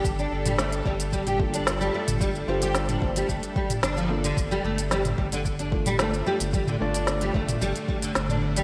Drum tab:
HH |---x-x-x-x-x---x|---x-x-x-x-x---x|---x-x-x-x-x---x|---x-x-x-x-x---x|
SH |xx-xxx-xxx-xxx-x|xx-xxx-xxx-xxx-x|xx-xxx-xxx-xxx-x|xx-xxx-xxx-xxx-x|
SD |----o-------o---|----o-------o---|----o-------o---|----o-------o---|
T2 |---o-----o-----o|-----o-----o----|-----o-----o----|-o-----o-----o--|
BD |o-----o-o-o-----|o-----o-o-o-----|o-----o-o-o-----|o-----o---o-----|